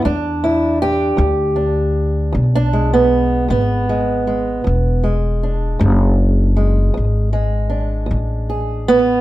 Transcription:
0.02 E2 D4
0.44 E4
0.82 G4
1.17 D2 E2
1.56 D4
2.33 B1 E2
2.55 D4
2.73 G#3
2.93 B3
3.48 G#1 E2 B3
3.89 G#3
4.27 G#3
4.64 E1 E2
5.04 G#3
5.43 D4
5.79 F#1 E2
6.57 G#3
6.94 G#1 E2
7.33 G#3
7.70 D4
8.06 E2
8.11 A1
8.50 G#4
8.88 B3

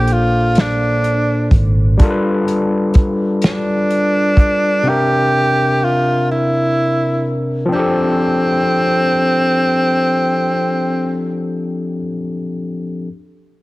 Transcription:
Already playing: A#1 A#2 A#3 D4 G4 A4 C5
0.08 closed hi-hat
0.13 F4
0.55 snare, closed hi-hat
0.60 D4
1.04 closed hi-hat
1.51 G#1, kick, closed hi-hat
1.97 G3 D4 F4, kick, closed hi-hat
2.02 A4 A#4
2.10 B4
2.48 closed hi-hat
2.94 kick, closed hi-hat
3.42 D4, snare, closed hi-hat
3.91 closed hi-hat
4.37 kick, closed hi-hat
4.83 C3 C4 D4
4.88 G4 A#4 E5
5.84 F4
6.31 E4
7.66 F3 C4
7.72 C4 D4 G4
7.79 A4

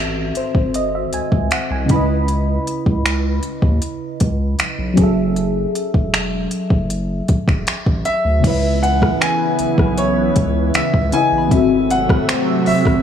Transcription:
Already playing: A1 G#2 D#3 C4 F#4 A4 E5
0.35 C5, closed hi-hat
0.55 G#1, kick
0.74 D#5, closed hi-hat
0.95 E5
1.13 C#2 G#5, closed hi-hat
1.32 C#2, kick
1.51 C2 F#5, finger snap, closed hi-hat
1.71 C2 G#5
1.86 C#3 C#4, kick, closed hi-hat
1.90 C#2 E4 B4 B5
1.96 D#5
2.28 closed hi-hat
2.67 closed hi-hat
2.86 C#2, kick
3.05 C#2, finger snap, closed hi-hat
3.43 closed hi-hat
3.62 D#2, kick
3.82 closed hi-hat
4.20 C#2, kick, closed hi-hat
4.59 B1, finger snap, closed hi-hat
4.79 B1
4.94 F#3 C#4, kick, closed hi-hat
4.98 F#1 G#4 A4
5.03 E5
5.36 closed hi-hat
5.75 closed hi-hat
5.94 E1, kick
6.13 E1, finger snap, closed hi-hat
6.51 closed hi-hat
6.70 F#1, kick
6.90 closed hi-hat
7.28 E1, kick, closed hi-hat
7.48 E1, finger snap, kick
7.67 A1, finger snap, closed hi-hat
7.86 A1, kick
8.05 E5, closed hi-hat
8.25 D2
8.40 C#3 C#4
8.44 C#2 C#3 E3 B3 E4 B4, kick, closed hi-hat, crash
8.50 E5
8.83 F#5 G#5, closed hi-hat
9.02 kick, cross-stick
9.21 G#5, finger snap, closed hi-hat
9.59 B1, closed hi-hat
9.78 B1, kick, cross-stick
9.98 C#5, closed hi-hat
10.36 C#2, kick, closed hi-hat
10.74 C#2 E5, finger snap, closed hi-hat
10.94 C#2, kick
11.12 C#3 C#4 E4 B4 F#5 G#5, closed hi-hat
11.17 D#5
11.32 A1
11.38 B5
11.48 G#1 G#2 D#3 F#3 A3 C4 E5, kick, closed hi-hat
11.52 C3 F#4 A4 E5
11.57 E5
11.90 F#5, closed hi-hat
12.09 kick, cross-stick
12.28 C5, finger snap, closed hi-hat
12.66 A1 E5, open hi-hat
12.85 A1, kick, cross-stick

